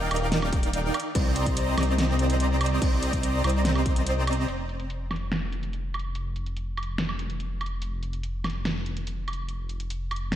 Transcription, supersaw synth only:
0.11 0.93 D#4 medium
0.11 0.93 A#4 medium
0.11 0.93 D5 medium
0.11 0.93 F5 medium
0.11 0.93 G5 medium
1.15 1.75 C4 medium
1.15 1.75 C5 medium
1.15 1.75 D5 medium
1.15 1.75 D#5 medium
1.15 1.75 A#5 loud
1.78 2.79 C4 medium
1.78 2.79 C5 medium
1.78 2.79 D5 medium
1.78 2.79 D#5 medium
1.78 2.79 A#5 medium
2.82 3.42 C4 medium
2.82 3.42 C5 medium
2.82 3.42 D5 medium
2.82 3.42 D#5 medium
2.82 3.42 A#5 loud
3.44 4.46 C4 medium
3.44 4.46 C5 medium
3.44 4.46 D5 medium
3.44 4.46 D#5 medium
3.44 4.46 A#5 medium

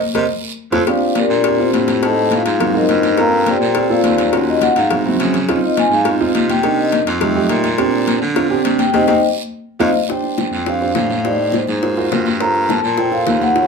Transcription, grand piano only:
0.15 0.25 A#4 medium
0.15 0.24 C5 medium
0.15 0.25 D#5 medium
0.72 0.82 F4 loud
0.72 0.82 A4 loud
0.72 0.82 C5 loud
0.87 1.28 C4 medium
0.87 1.28 D4 medium
0.87 1.28 G4 medium
1.45 1.55 C4 medium
1.45 1.55 D4 medium
1.45 1.55 G4 medium
1.59 1.90 C4 medium
1.59 1.90 D4 medium
1.59 1.90 F4 medium
2.02 2.43 C4 medium
2.02 2.43 D#4 medium
2.02 2.43 G4 medium
2.60 2.70 A#3 medium
2.60 2.70 C4 medium
2.60 2.70 F4 medium
2.60 2.70 F#4 medium
2.74 3.05 A#3 medium
2.74 3.05 C4 medium
2.74 3.05 F4 medium
2.74 3.05 F#4 medium
3.18 3.58 A#3 medium
3.18 3.58 C4 medium
3.18 3.59 F4 medium
3.18 3.58 A4 medium
3.76 3.86 A#3 medium
3.76 3.86 C4 medium
3.76 3.86 F4 medium
3.76 3.86 A4 medium
3.90 4.20 A#3 medium
3.90 4.20 C4 medium
3.90 4.20 F4 medium
3.90 4.20 A4 medium
4.33 4.74 C#4 medium
4.33 4.74 F4 medium
4.33 4.74 F#4 loud
4.92 5.01 C4 medium
4.92 5.02 E4 medium
4.92 5.02 F#4 medium
5.05 5.36 C4 loud
5.05 5.36 E4 medium
5.05 5.36 F#4 loud
5.49 5.89 C4 medium
5.49 5.89 D#4 medium
5.49 5.89 F4 loud
6.06 6.16 C4 medium
6.06 6.16 D#4 medium
6.06 6.16 F4 medium
6.20 6.51 C4 loud
6.20 6.51 D#4 medium
6.20 6.51 F4 loud
6.63 7.04 A#3 medium
6.63 7.04 D4 medium
6.63 7.04 D#4 medium
7.22 7.32 A3 medium
7.22 7.32 D#4 medium
7.22 7.32 G4 medium
7.35 7.66 A3 medium
7.35 7.66 D#4 medium
7.35 7.66 G4 loud
7.78 8.19 C4 loud
7.78 8.19 D4 medium
7.78 8.19 G4 loud
8.36 8.46 C4 medium
8.36 8.46 D4 medium
8.36 8.46 F4 medium
8.50 8.81 C4 medium
8.50 8.81 D4 medium
8.50 8.81 G4 loud
8.94 9.03 C4 loud
8.94 9.03 D#4 loud
8.94 9.03 G4 loud
9.09 9.18 C4 loud
9.09 9.18 D#4 loud
9.09 9.18 G4 loud
9.79 9.89 C4 loud
9.79 9.89 D#4 loud
9.79 9.89 F4 loud
10.09 10.49 D4 medium
10.09 10.49 G4 medium
10.09 10.49 C5 medium
10.66 10.77 D4 medium
10.66 10.77 G4 medium
10.66 10.77 C5 medium
10.81 11.11 D4 medium
10.81 11.11 G4 medium
10.81 11.12 C5 medium
11.24 11.65 D#4 medium
11.24 11.65 G4 medium
11.24 11.65 C5 medium
11.82 11.93 F4 medium
11.82 11.92 F#4 medium
11.82 11.93 A#4 medium
11.82 11.92 C5 medium
11.97 12.27 F4 medium
11.97 12.27 F#4 medium
11.97 12.27 A#4 medium
11.97 12.27 C5 medium
12.41 12.81 F4 medium
12.41 12.81 A4 medium
12.41 12.81 A#4 medium
12.41 12.81 C5 medium
12.98 13.08 F4 medium
12.98 13.08 A4 medium
12.98 13.08 A#4 medium
12.98 13.08 C5 medium
13.12 13.42 F4 medium
13.12 13.42 A4 medium
13.12 13.42 A#4 medium
13.12 13.42 C5 medium
13.55 13.67 F4 medium
13.55 13.67 F#4 medium
13.55 13.67 C#5 medium

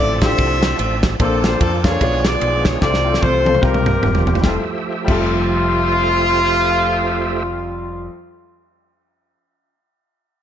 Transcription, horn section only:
0.00 0.35 F4 medium
0.00 0.21 A4 medium
0.00 0.20 D5 loud
0.22 0.99 A4 medium
0.22 0.99 C5 medium
0.22 1.03 E5 loud
1.20 1.97 C4 medium
1.20 1.97 D4 medium
1.20 1.42 A4 medium
1.44 1.59 C5 loud
1.60 1.83 A4 loud
1.84 2.25 F4 medium
1.84 2.24 G#4 medium
1.84 2.25 C#5 loud
2.25 2.78 F4 medium
2.25 2.78 G#4 medium
2.25 2.66 D5 loud
2.65 2.82 C#5 loud
2.82 3.22 F4 medium
2.82 3.22 A4 medium
2.82 3.22 D5 loud
3.22 3.60 F4 medium
3.22 3.60 A4 medium
3.22 3.63 C5 loud
3.63 4.40 F4 medium
3.63 4.40 G4 medium
3.63 4.27 A#4 medium
4.43 4.57 F4 medium
5.07 8.07 F4 loud

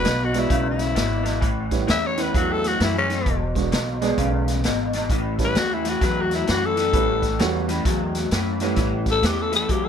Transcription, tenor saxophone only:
0.00 0.26 B4 medium
0.25 0.40 F#4 medium
0.39 0.67 E4 medium
0.70 1.57 E4 medium
1.91 2.08 E5 medium
2.07 2.23 C#5 medium
2.21 2.35 B4 medium
2.37 2.54 F#4 medium
2.53 2.69 A4 medium
2.68 2.81 F#4 medium
2.83 2.97 E4 medium
2.98 3.42 C#4 medium
5.44 5.59 B4 medium
5.58 5.75 F#4 medium
5.74 5.91 E4 medium
5.89 6.07 F#4 medium
6.05 6.23 B4 medium
6.21 6.34 F#4 medium
6.35 6.52 E4 medium
6.51 6.67 F#4 medium
6.66 7.54 A4 medium
9.11 9.28 A4 medium
9.26 9.44 G4 medium
9.43 9.55 A4 medium
9.56 9.73 A4 loud
9.71 9.87 G4 medium
9.85 9.89 A4 medium

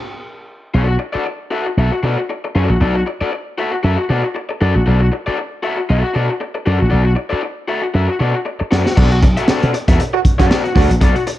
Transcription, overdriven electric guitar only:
0.74 0.95 F#4 medium
0.74 0.87 A4 medium
0.74 0.86 D5 medium
0.88 muted overdriven electric guitar stroke soft
0.99 muted overdriven electric guitar stroke soft
1.13 1.24 F#4 soft
1.13 1.25 A4 medium
1.13 1.25 D5 medium
1.26 muted overdriven electric guitar stroke soft
1.51 1.67 F#4 medium
1.51 1.66 A4 medium
1.51 1.66 E5 medium
1.67 muted overdriven electric guitar stroke soft
1.78 1.98 F#4 medium
1.78 1.92 A4 medium
1.78 1.92 E5 medium
1.92 muted overdriven electric guitar stroke soft
2.03 2.19 F#4 medium
2.03 2.18 A4 medium
2.03 2.17 D5 medium
2.18 muted overdriven electric guitar stroke medium
2.30 muted overdriven electric guitar stroke soft
2.44 muted overdriven electric guitar stroke soft
2.55 2.76 F#4 medium
2.55 2.70 A4 medium
2.55 2.69 D5 medium
2.70 muted overdriven electric guitar stroke soft
2.80 3.01 F#4 medium
2.80 2.95 A4 medium
2.80 2.94 D5 medium
2.96 muted overdriven electric guitar stroke soft
3.06 muted overdriven electric guitar stroke soft
3.21 3.30 F#4 soft
3.21 3.31 A4 soft
3.21 3.32 D5 medium
3.32 muted overdriven electric guitar stroke soft
3.58 3.74 F#4 medium
3.58 3.72 A4 medium
3.58 3.72 E5 medium
3.72 muted overdriven electric guitar stroke soft
3.83 4.04 F#4 medium
3.83 3.98 A4 medium
3.83 3.97 E5 medium
3.98 muted overdriven electric guitar stroke medium
4.09 4.26 F#4 medium
4.09 4.23 A4 medium
4.09 4.22 D5 medium
4.23 muted overdriven electric guitar stroke soft
4.35 muted overdriven electric guitar stroke soft
4.49 muted overdriven electric guitar stroke soft
4.61 4.81 F#4 medium
4.61 4.75 A4 medium
4.61 4.74 D5 medium
4.75 muted overdriven electric guitar stroke soft
4.86 5.06 F#4 medium
4.86 5.01 A4 medium
4.86 5.00 D5 medium
5.01 muted overdriven electric guitar stroke soft
5.12 muted overdriven electric guitar stroke soft
5.26 5.37 F#4 medium
5.26 5.37 A4 medium
5.26 5.38 D5 medium
5.38 muted overdriven electric guitar stroke soft
5.63 5.80 F#4 medium
5.63 5.77 A4 medium
5.63 5.78 E5 medium
5.78 muted overdriven electric guitar stroke soft
5.89 6.10 F#4 medium
5.89 6.03 A4 medium
5.89 6.03 E5 medium
6.04 muted overdriven electric guitar stroke soft
6.14 6.31 F#4 medium
6.14 6.30 A4 medium
6.14 6.29 D5 medium
6.30 muted overdriven electric guitar stroke soft
6.40 muted overdriven electric guitar stroke soft
6.55 muted overdriven electric guitar stroke soft
6.66 6.86 F#4 medium
6.66 6.79 A4 medium
6.66 6.78 D5 medium
6.79 muted overdriven electric guitar stroke soft
6.90 7.11 F#4 medium
6.90 7.04 A4 medium
6.90 7.03 D5 loud
7.04 muted overdriven electric guitar stroke soft
7.15 muted overdriven electric guitar stroke soft
7.29 7.41 F#4 soft
7.29 7.42 A4 medium
7.29 7.42 D5 medium
7.42 muted overdriven electric guitar stroke soft
7.68 7.85 F#4 medium
7.68 7.82 A4 medium
7.68 7.82 E5 medium
7.83 muted overdriven electric guitar stroke soft
7.94 8.15 F#4 medium
7.94 8.09 A4 medium
7.94 8.09 E5 medium
8.09 muted overdriven electric guitar stroke soft
8.19 8.36 F#4 medium
8.19 8.34 A4 medium
8.19 8.33 D5 medium
8.35 muted overdriven electric guitar stroke soft
8.45 muted overdriven electric guitar stroke soft
8.60 muted overdriven electric guitar stroke soft
8.71 8.91 F#4 medium
8.71 8.85 A4 medium
8.71 8.84 D5 medium
8.85 muted overdriven electric guitar stroke soft
8.96 9.17 F#4 medium
8.96 9.11 A4 loud
8.96 9.10 D5 loud
9.11 muted overdriven electric guitar stroke soft
9.23 muted overdriven electric guitar stroke medium
9.37 9.47 F#4 medium
9.37 9.48 A4 medium
9.37 9.49 E5 medium
9.48 9.68 F#4 medium
9.48 9.69 A4 loud
9.48 9.69 D5 loud
9.73 muted overdriven electric guitar stroke medium
9.88 9.99 F#4 medium
9.88 10.00 A4 medium
9.88 10.01 E5 medium
10.00 muted overdriven electric guitar stroke soft
10.13 muted overdriven electric guitar stroke medium
10.39 10.49 F#4 medium
10.39 10.49 A4 medium
10.39 10.50 D5 medium
10.50 10.70 F#4 medium
10.50 10.64 A4 loud
10.50 10.63 D5 loud
10.64 muted overdriven electric guitar stroke soft
10.75 10.92 F#4 medium
10.75 10.90 A4 medium
10.75 10.89 D5 medium
10.90 muted overdriven electric guitar stroke soft
11.01 11.21 F#4 medium
11.01 11.15 A4 medium
11.01 11.15 D5 loud
11.16 muted overdriven electric guitar stroke soft
11.27 muted overdriven electric guitar stroke soft

